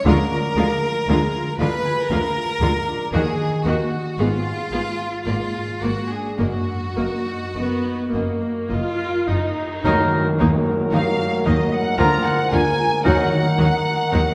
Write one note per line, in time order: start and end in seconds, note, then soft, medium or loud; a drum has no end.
0.00 0.55 F3 medium
0.00 0.81 F4 medium
0.00 1.07 G#4 medium
0.00 1.58 F5 medium
0.00 1.84 G#5 medium
0.04 0.13 D2 loud
0.04 3.17 D3 medium
0.04 0.14 D3 medium
0.04 0.13 G#3 medium
0.04 0.13 F4 medium
0.04 1.58 A#4 loud
0.04 0.13 F5 medium
0.31 2.86 D4 medium
0.56 0.64 D2 medium
0.56 0.65 D3 medium
0.56 2.61 F3 medium
0.56 0.65 G#3 medium
0.56 0.65 F4 medium
0.56 0.65 F5 medium
0.83 1.33 F4 medium
1.07 1.15 D2 medium
1.07 1.17 D3 medium
1.07 1.17 G#3 medium
1.07 1.16 F4 medium
1.07 3.17 G#4 medium
1.07 1.16 F5 medium
1.34 2.35 F4 medium
1.59 1.67 D2 medium
1.59 1.68 D3 medium
1.59 1.68 G#3 medium
1.59 1.68 F4 medium
1.59 2.10 B4 loud
1.59 2.09 F5 medium
1.59 1.68 F5 medium
1.85 3.18 G#5 medium
2.09 2.18 D2 medium
2.09 2.19 D3 medium
2.09 2.19 G#3 medium
2.09 2.19 F4 medium
2.09 3.13 A#4 loud
2.09 3.18 F5 medium
2.09 2.19 F5 medium
2.36 3.18 F4 medium
2.60 2.68 D2 medium
2.60 2.69 D3 medium
2.60 3.18 F3 medium
2.60 2.70 G#3 medium
2.60 2.70 F4 medium
2.60 2.69 F5 medium
2.87 3.18 D4 medium
3.13 3.21 D#2 medium
3.13 4.23 D#3 medium
3.13 3.22 D#3 medium
3.13 3.21 A#3 medium
3.13 3.22 F#4 medium
3.13 3.65 G#4 loud
3.13 3.22 D#5 medium
3.40 4.23 A#3 medium
3.66 3.74 D#2 medium
3.66 3.75 D#3 medium
3.66 3.74 A#3 medium
3.66 4.23 D#4 medium
3.66 4.19 F#4 medium
3.66 3.75 F#4 medium
3.66 3.74 D#5 medium
3.93 4.23 F#4 medium
4.18 4.26 G#1 medium
4.18 5.25 G#2 medium
4.18 4.27 G#2 medium
4.18 4.27 B3 medium
4.18 5.24 F4 loud
4.18 4.27 G#4 medium
4.18 4.26 F5 medium
4.45 5.53 G#3 medium
4.72 4.80 G#1 medium
4.72 4.81 G#2 medium
4.72 4.80 B3 medium
4.72 5.31 B3 medium
4.72 4.80 G#4 medium
4.72 4.80 F5 medium
4.99 6.44 F4 medium
5.25 5.35 G#1 medium
5.25 6.44 G#2 medium
5.25 5.35 G#2 medium
5.25 5.34 A#3 medium
5.25 5.80 F4 medium
5.25 5.34 A#4 medium
5.25 5.35 D5 medium
5.54 6.44 G#3 medium
5.81 5.90 G#1 medium
5.81 5.90 G#2 medium
5.81 5.89 A#3 medium
5.81 6.95 A#3 soft
5.81 6.10 F#4 medium
5.81 5.89 A#4 medium
5.81 5.90 D5 medium
6.10 6.43 D4 soft
6.10 6.39 G#4 medium
6.38 6.47 F#1 medium
6.38 9.89 F#2 medium
6.38 6.47 F#2 medium
6.38 6.46 A#3 medium
6.38 8.70 F#4 medium
6.38 6.46 A#4 medium
6.38 6.46 D#5 medium
6.67 10.57 F#3 medium
6.96 7.06 F#1 medium
6.96 7.05 F#2 medium
6.96 7.04 A#3 medium
6.96 9.55 A#3 medium
6.96 7.04 A#4 medium
6.96 7.05 D#5 medium
7.26 7.83 D#4 medium
7.54 7.63 F#1 medium
7.54 7.64 F#2 medium
7.54 8.09 B3 medium
7.54 8.97 A#4 medium
7.54 7.64 D#5 medium
7.84 9.26 D#4 medium
8.12 8.21 F#1 medium
8.12 8.21 F#2 medium
8.12 8.70 A#3 medium
8.12 8.69 D#5 medium
8.12 8.22 D#5 soft
8.41 11.72 A#5 medium
8.70 8.79 F#1 medium
8.70 8.79 F#2 medium
8.70 9.28 F4 medium
8.70 12.03 D#5 medium
8.70 8.78 D#5 medium
8.98 10.92 A#4 medium
9.28 9.36 F#1 medium
9.28 9.36 F#2 medium
9.28 10.11 D#4 soft
9.28 9.84 D#4 medium
9.28 9.36 D#5 soft
9.56 10.37 A#3 soft
9.84 9.93 D#2 medium
9.84 12.03 D#3 medium
9.84 9.93 D#3 medium
9.84 10.28 F#3 medium
9.84 11.95 F#3 medium
9.84 9.93 A#3 medium
9.84 10.27 D#4 medium
9.84 9.94 D#4 medium
9.84 9.92 F#4 medium
9.84 9.92 A#4 medium
9.84 10.28 A#4 medium
9.84 11.95 A#4 medium
9.84 tam-tam medium
10.12 12.03 D#4 medium
10.38 10.48 D#2 medium
10.38 10.47 D#3 medium
10.38 12.51 A#3 medium
10.38 10.48 A#3 medium
10.38 10.48 D#4 medium
10.38 10.48 F#4 medium
10.38 10.48 A#4 medium
10.66 11.18 F#4 medium
10.92 11.01 D#2 medium
10.92 11.00 D#3 medium
10.92 11.01 A#3 medium
10.92 11.01 D#4 medium
10.92 11.00 F#4 medium
10.92 11.00 A#4 medium
10.92 14.11 A#4 medium
10.92 11.48 F5 medium
10.92 11.43 F5 loud
11.19 12.03 F#4 medium
11.45 11.54 D#2 medium
11.45 11.54 D#3 medium
11.45 11.53 A#3 medium
11.45 11.53 D#4 medium
11.45 11.53 F#4 medium
11.45 11.54 A#4 medium
11.45 11.74 D#5 medium
11.45 11.73 D#5 medium
11.45 12.03 F#5 medium
11.72 12.01 F#5 medium
11.72 11.99 F#5 loud
11.72 14.34 A#5 medium
11.98 12.07 D2 medium
11.98 12.07 D3 medium
11.98 13.10 D3 medium
11.98 12.40 F3 medium
11.98 13.06 F3 medium
11.98 12.06 A#3 medium
11.98 12.06 F4 medium
11.98 12.40 F4 medium
11.98 12.06 A#4 medium
11.98 12.40 A#4 medium
11.98 13.03 A#4 medium
11.98 12.27 A#5 loud
11.98 12.26 A#5 medium
12.25 13.10 G#3 medium
12.25 12.52 F#5 medium
12.25 12.52 F#5 loud
12.51 12.60 D2 medium
12.51 12.61 D3 medium
12.51 13.32 A#3 medium
12.51 12.60 A#3 medium
12.51 12.59 F4 medium
12.51 12.60 F4 medium
12.51 12.59 A#4 medium
12.51 13.05 G#5 medium
12.51 13.06 G#5 loud
12.79 13.10 F4 medium
13.04 13.14 D#2 medium
13.04 14.34 D#3 medium
13.04 13.14 D#3 medium
13.04 14.34 D#3 medium
13.04 13.13 F#3 medium
13.04 13.47 F#3 medium
13.04 13.12 D#4 medium
13.04 13.47 D#4 medium
13.04 13.13 F#4 medium
13.04 13.46 A#4 medium
13.04 13.13 A#4 medium
13.04 14.34 A#4 medium
13.04 14.34 F#5 medium
13.04 14.34 F#5 loud
13.33 14.34 A#3 medium
13.57 13.67 D#2 medium
13.57 13.67 D#3 medium
13.57 13.67 F#3 medium
13.57 13.67 D#4 medium
13.57 14.34 D#4 medium
13.57 13.65 F#4 medium
13.57 13.65 A#4 medium
13.85 14.34 F#4 medium
14.10 14.21 D#2 medium
14.10 14.20 D#3 medium
14.10 14.20 F#3 medium
14.10 14.20 D#4 medium
14.10 14.19 F#4 medium
14.10 14.18 A#4 medium
14.10 14.34 A#4 medium